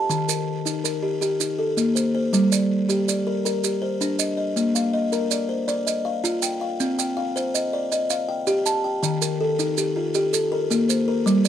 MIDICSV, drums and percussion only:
0, 0, Header, 1, 2, 480
1, 0, Start_track
1, 0, Tempo, 372439
1, 126, Time_signature, 12, 3, 24, 8
1, 14798, End_track
2, 0, Start_track
2, 0, Title_t, "Drums"
2, 135, Note_on_c, 9, 70, 56
2, 264, Note_off_c, 9, 70, 0
2, 373, Note_on_c, 9, 70, 83
2, 502, Note_off_c, 9, 70, 0
2, 857, Note_on_c, 9, 70, 66
2, 986, Note_off_c, 9, 70, 0
2, 1097, Note_on_c, 9, 70, 87
2, 1226, Note_off_c, 9, 70, 0
2, 1573, Note_on_c, 9, 70, 55
2, 1702, Note_off_c, 9, 70, 0
2, 1811, Note_on_c, 9, 70, 86
2, 1939, Note_off_c, 9, 70, 0
2, 2290, Note_on_c, 9, 70, 62
2, 2419, Note_off_c, 9, 70, 0
2, 2531, Note_on_c, 9, 70, 74
2, 2660, Note_off_c, 9, 70, 0
2, 3012, Note_on_c, 9, 70, 64
2, 3141, Note_off_c, 9, 70, 0
2, 3250, Note_on_c, 9, 70, 80
2, 3379, Note_off_c, 9, 70, 0
2, 3732, Note_on_c, 9, 70, 59
2, 3861, Note_off_c, 9, 70, 0
2, 3976, Note_on_c, 9, 70, 85
2, 4105, Note_off_c, 9, 70, 0
2, 4458, Note_on_c, 9, 70, 64
2, 4587, Note_off_c, 9, 70, 0
2, 4690, Note_on_c, 9, 70, 83
2, 4819, Note_off_c, 9, 70, 0
2, 5174, Note_on_c, 9, 70, 62
2, 5303, Note_off_c, 9, 70, 0
2, 5405, Note_on_c, 9, 70, 86
2, 5533, Note_off_c, 9, 70, 0
2, 5887, Note_on_c, 9, 70, 47
2, 6016, Note_off_c, 9, 70, 0
2, 6131, Note_on_c, 9, 70, 73
2, 6260, Note_off_c, 9, 70, 0
2, 6606, Note_on_c, 9, 70, 53
2, 6735, Note_off_c, 9, 70, 0
2, 6844, Note_on_c, 9, 70, 71
2, 6973, Note_off_c, 9, 70, 0
2, 7326, Note_on_c, 9, 70, 59
2, 7455, Note_off_c, 9, 70, 0
2, 7571, Note_on_c, 9, 70, 70
2, 7700, Note_off_c, 9, 70, 0
2, 8051, Note_on_c, 9, 70, 58
2, 8180, Note_off_c, 9, 70, 0
2, 8278, Note_on_c, 9, 70, 79
2, 8407, Note_off_c, 9, 70, 0
2, 8765, Note_on_c, 9, 70, 61
2, 8894, Note_off_c, 9, 70, 0
2, 9008, Note_on_c, 9, 70, 76
2, 9137, Note_off_c, 9, 70, 0
2, 9496, Note_on_c, 9, 70, 54
2, 9625, Note_off_c, 9, 70, 0
2, 9731, Note_on_c, 9, 70, 72
2, 9859, Note_off_c, 9, 70, 0
2, 10208, Note_on_c, 9, 70, 54
2, 10337, Note_off_c, 9, 70, 0
2, 10440, Note_on_c, 9, 70, 73
2, 10569, Note_off_c, 9, 70, 0
2, 10918, Note_on_c, 9, 70, 54
2, 11047, Note_off_c, 9, 70, 0
2, 11163, Note_on_c, 9, 70, 74
2, 11291, Note_off_c, 9, 70, 0
2, 11642, Note_on_c, 9, 70, 59
2, 11771, Note_off_c, 9, 70, 0
2, 11882, Note_on_c, 9, 70, 73
2, 12011, Note_off_c, 9, 70, 0
2, 12365, Note_on_c, 9, 70, 61
2, 12494, Note_off_c, 9, 70, 0
2, 12599, Note_on_c, 9, 70, 66
2, 12727, Note_off_c, 9, 70, 0
2, 13076, Note_on_c, 9, 70, 54
2, 13204, Note_off_c, 9, 70, 0
2, 13323, Note_on_c, 9, 70, 78
2, 13451, Note_off_c, 9, 70, 0
2, 13804, Note_on_c, 9, 70, 63
2, 13933, Note_off_c, 9, 70, 0
2, 14045, Note_on_c, 9, 70, 78
2, 14174, Note_off_c, 9, 70, 0
2, 14527, Note_on_c, 9, 70, 64
2, 14656, Note_off_c, 9, 70, 0
2, 14756, Note_on_c, 9, 70, 73
2, 14798, Note_off_c, 9, 70, 0
2, 14798, End_track
0, 0, End_of_file